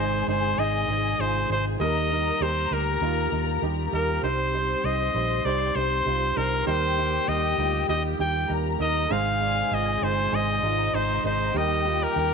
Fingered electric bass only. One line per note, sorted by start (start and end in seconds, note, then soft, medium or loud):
0.00 0.22 G#1 loud
0.28 0.53 G1 medium
0.58 0.83 G#1 loud
0.88 1.13 G#1 loud
1.19 1.44 G#1 medium
1.50 1.75 G#1 loud
1.80 2.30 D#2 loud
2.41 2.66 D#2 loud
2.71 2.96 D2 medium
3.01 3.26 D#2 loud
3.32 3.57 D#2 medium
3.62 3.87 D#2 loud
3.93 4.18 D#2 medium
4.23 4.73 C2 loud
4.84 5.09 C2 loud
5.14 5.40 A#1 medium
5.45 5.70 C2 medium
5.75 6.01 C2 loud
6.06 6.31 C2 loud
6.37 6.62 C2 loud
6.67 7.17 D#2 loud
7.28 7.53 D#2 loud
7.58 7.83 D2 medium
7.89 8.14 D#2 medium
8.19 8.44 D#2 loud
8.50 8.75 D#2 loud
8.80 9.05 D#2 loud
9.11 9.61 G#1 loud
9.71 9.97 G#1 medium
10.02 10.27 G1 medium
10.32 10.58 G#1 loud
10.63 10.88 G#1 loud
10.93 11.18 G#1 loud
11.24 11.49 G#1 loud
11.54 12.05 D#2 loud
12.16 12.34 D#2 loud